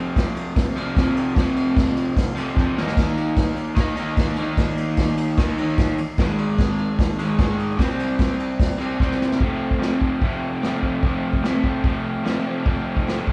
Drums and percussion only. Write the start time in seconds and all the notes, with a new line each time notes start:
0.16 kick, snare, ride
0.36 ride
0.56 kick, snare, ride
0.76 ride
0.96 kick, snare, ride
1.17 ride
1.36 kick, snare, ride
1.56 ride
1.77 kick, snare, ride
1.97 ride
2.17 kick, snare, ride
2.37 ride
2.57 kick, snare
2.78 snare
2.88 snare
2.97 kick, snare, crash, ride
3.17 ride
3.36 kick, snare, ride
3.56 ride
3.76 kick, snare, ride
3.97 ride
4.17 kick, snare, ride
4.36 ride
4.57 kick, snare, ride
4.77 ride
4.97 kick, snare, ride
5.17 ride
5.37 kick, snare, ride
5.58 ride
5.77 kick, snare, ride
5.98 ride
6.18 kick, snare, ride
6.38 ride
6.58 kick, snare, ride
6.78 ride
6.99 kick, snare, ride
7.19 ride
7.38 kick, snare, ride
7.59 ride
7.79 kick, snare, ride
7.99 ride
8.19 kick, snare, ride
8.40 ride
8.60 kick, snare, ride
8.80 ride
9.00 kick, snare
9.12 snare
9.22 snare
9.32 snare
9.40 kick, open hi-hat
9.71 kick
9.81 snare, open hi-hat
10.01 kick
10.22 kick, open hi-hat
10.62 snare, open hi-hat
10.83 kick
11.03 kick, open hi-hat
11.33 kick
11.43 snare, open hi-hat
11.64 kick
11.84 kick, open hi-hat
12.25 snare, open hi-hat
12.66 kick, open hi-hat
12.97 kick
13.07 snare, open hi-hat
13.27 kick